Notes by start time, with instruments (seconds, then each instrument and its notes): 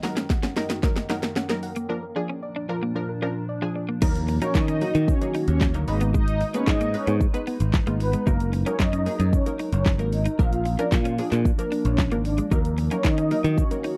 Already playing: ambient pad F#2 D#3 A#3
0.03 synth stab F#3 D#4 A#4, synth pluck F#5, muted clean electric guitar stroke, snare, open hi-hat, shaker
0.17 clean electric guitar C#4, snare, closed hi-hat, shaker
0.30 synth pluck F#5, kick, snare, shaker
0.43 clean electric guitar C#4, synth pluck F#5, snare, closed hi-hat, shaker
0.56 synth stab F#3 D#4 A#4, synth pluck D#5, muted clean electric guitar stroke, snare, open hi-hat, shaker
0.70 clean electric guitar D#4, synth pluck F#4, snare, closed hi-hat, shaker
0.83 synth stab F#3 D#4 A#4, synth pluck F#4, kick, snare, shaker
0.96 synth pluck D#5, snare, closed hi-hat, shaker
1.09 synth stab F#3 D#4 A#4, clean electric guitar D#4, synth pluck F#5, snare, open hi-hat, shaker
1.23 snare, closed hi-hat, shaker
1.36 clean electric guitar C#4, synth pluck F#5, snare, shaker
1.49 synth stab F#3 D#4 A#4, muted clean electric guitar stroke, snare, closed hi-hat, shaker
1.63 synth pluck F#5, open hi-hat, shaker
1.76 clean electric guitar A#3, closed hi-hat, shaker
1.89 ambient pad A#2 F3 D4, synth stab F3 D4 A#4, synth pluck A#3, clean electric guitar A#3
2.03 synth pluck A#4
2.16 synth stab F3 D4 G#4, synth pluck D5, muted clean electric guitar stroke
2.29 clean electric guitar C#4
2.43 synth pluck D5
2.56 clean electric guitar D4, synth pluck D5
2.69 synth stab F3 D4 A#4, synth pluck A#4, muted clean electric guitar stroke
2.82 synth pluck A#3, clean electric guitar A#3
2.95 synth stab F3 D4 A#4, synth pluck A#3
3.09 synth pluck A#4
3.22 synth stab F3 D4 A#4, clean electric guitar C#4, synth pluck D5
3.49 synth pluck D5
3.62 synth stab F3 D4 G#4, clean electric guitar D4
3.75 synth pluck D5, muted clean electric guitar stroke
3.89 clean electric guitar A#3
4.02 picked electric bass D#2, ambient pad D#3 A#3 F#4, synth stab F#3 A#3 D#4 A#4, supersaw synth A#3 A#4, clean electric guitar D#4, kick, crash, shaker
4.16 closed hi-hat, shaker
4.28 muted clean electric guitar stroke, open hi-hat, shaker
4.41 synth stab F#3 A#3 D#4 A#4, clean electric guitar C#4, supersaw synth C#4 C#5, closed hi-hat, shaker
4.55 picked electric bass D#3, supersaw synth D#4 D#5, kick, snare, clap, shaker
4.68 clean electric guitar C#4, closed hi-hat, shaker
4.81 synth stab F#3 A#3 D#4 F#4, supersaw synth D#4 D#5, muted clean electric guitar stroke, open hi-hat, shaker
4.95 picked electric bass D#3, clean electric guitar D#4, closed hi-hat, shaker
5.08 supersaw synth C#4 C#5, kick, shaker
5.21 synth stab F#3 A#3 D#4 G#4, closed hi-hat, shaker
5.34 clean electric guitar D#4, open hi-hat, shaker
5.48 picked electric bass D#2, supersaw synth C#4 C#5, closed hi-hat, shaker
5.61 clean electric guitar C#4, kick, snare, clap, shaker
5.74 picked electric bass D2, synth stab F#3 A#3 D#4 A#4, muted clean electric guitar stroke, closed hi-hat, shaker
5.88 picked electric bass G#1, synth stab G#3 B3 D#4 B4, ambient pad G#3 D#4 B4, supersaw synth D#4 D#5, open hi-hat, shaker
6.01 clean electric guitar B3, closed hi-hat, shaker
6.14 clean electric guitar G#3, supersaw synth D#4 D#5, kick, shaker
6.28 closed hi-hat, shaker
6.41 muted clean electric guitar stroke, open hi-hat, shaker
6.54 synth stab G#3 B3 D#4 B4, clean electric guitar A#3, supersaw synth C#4 C#5, closed hi-hat, shaker
6.67 picked electric bass G#2, supersaw synth D#4 D#5, kick, snare, clap, shaker
6.81 clean electric guitar A#3, closed hi-hat, shaker
6.94 synth stab G#3 B3 D#4 B4, supersaw synth C#4 C#5, muted clean electric guitar stroke, open hi-hat, shaker
7.07 picked electric bass G#2, clean electric guitar B3, closed hi-hat, shaker
7.21 kick, shaker
7.34 synth stab G#3 B3 D#4 B4, closed hi-hat, shaker
7.47 clean electric guitar B3, open hi-hat, shaker
7.60 picked electric bass G#1, closed hi-hat, shaker
7.74 kick, snare, clap, shaker
7.87 picked electric bass G#1, synth stab G#3 B3 D#4 F4, clean electric guitar A#3, closed hi-hat, shaker
8.00 supersaw synth B3 B4, muted clean electric guitar stroke, open hi-hat, shaker
8.13 clean electric guitar G#3, closed hi-hat, shaker
8.26 picked electric bass F#1, synth stab F#3 A#3 D#4 A#4, ambient pad F#3 A#4, supersaw synth A#3 A#4, clean electric guitar D#4, kick, shaker
8.40 closed hi-hat, shaker
8.53 muted clean electric guitar stroke, open hi-hat, shaker
8.66 synth stab F#3 A#3 D#4 A#4, clean electric guitar C#4, supersaw synth C#4 C#5, closed hi-hat, shaker
8.80 picked electric bass F#2, supersaw synth D#4 D#5, kick, snare, clap, shaker
8.93 clean electric guitar C#4, closed hi-hat, shaker
9.06 synth stab F#3 A#3 D#4 G#4, supersaw synth D#4 D#5, muted clean electric guitar stroke, open hi-hat, shaker
9.20 picked electric bass F#2, clean electric guitar D#4, closed hi-hat, shaker
9.33 supersaw synth C#4 C#5, kick, shaker
9.46 synth stab F#3 A#3 D#4 A#4, closed hi-hat, shaker
9.59 clean electric guitar D#4, open hi-hat, shaker
9.72 picked electric bass F#1, supersaw synth C#4 C#5, closed hi-hat, shaker
9.86 clean electric guitar C#4, kick, snare, clap, shaker
9.99 picked electric bass G#1, synth stab F#3 A#3 D#4 A#4, muted clean electric guitar stroke, closed hi-hat, shaker
10.12 supersaw synth D#4 D#5, open hi-hat, shaker
10.25 clean electric guitar D#4, closed hi-hat, shaker
10.39 picked electric bass A#1, synth stab F3 A#3 D4 A#4, ambient pad F3 A#3 D4, clean electric guitar A#3, supersaw synth F4 F5, kick, shaker
10.53 closed hi-hat, shaker
10.65 muted clean electric guitar stroke, open hi-hat, shaker
10.79 synth stab F3 A#3 D4 A#4, clean electric guitar C#4, supersaw synth D4 D5, closed hi-hat, shaker
10.92 picked electric bass A#2, supersaw synth F4 F5, kick, snare, clap, shaker
11.05 clean electric guitar C#4, closed hi-hat, shaker
11.18 synth stab F3 A#3 D4 G#4, supersaw synth D4 D5, muted clean electric guitar stroke, open hi-hat, shaker
11.32 picked electric bass A#2, clean electric guitar D4, clap, closed hi-hat, shaker
11.45 kick, shaker
11.58 synth stab F3 A#3 D4 A#4, supersaw synth A#3 A#4, closed hi-hat, shaker
11.72 clean electric guitar D4, open hi-hat, shaker
11.85 picked electric bass A#1, supersaw synth C#4 C#5, closed hi-hat, shaker
11.98 kick, snare, clap, shaker
12.11 picked electric bass G#1, synth stab F3 A#3 D4 A#4, clean electric guitar A#3, closed hi-hat, shaker
12.25 supersaw synth D4 D5, muted clean electric guitar stroke, open hi-hat, shaker
12.38 clean electric guitar G#3, closed hi-hat, shaker
12.51 picked electric bass D#2, ambient pad D#3 F#4, synth stab F#3 A#3 D#4 A#4, supersaw synth A#3 A#4, clean electric guitar D#4, kick, shaker
12.65 closed hi-hat, shaker
12.78 muted clean electric guitar stroke, open hi-hat, shaker
12.91 synth stab F#3 A#3 D#4 A#4, clean electric guitar C#4, supersaw synth C#4 C#5, closed hi-hat, shaker
13.04 picked electric bass D#3, supersaw synth D#4 D#5, kick, snare, clap, shaker
13.18 clean electric guitar C#4, closed hi-hat, shaker
13.31 synth stab F#3 A#3 D#4 A#4, supersaw synth D#4 D#5, muted clean electric guitar stroke, open hi-hat, shaker
13.44 picked electric bass D#3, clean electric guitar D#4, closed hi-hat, shaker
13.58 supersaw synth C#4 C#5, kick, shaker
13.71 synth stab F#3 A#3 D#4 A#4, closed hi-hat, shaker
13.84 clean electric guitar D#4, open hi-hat, shaker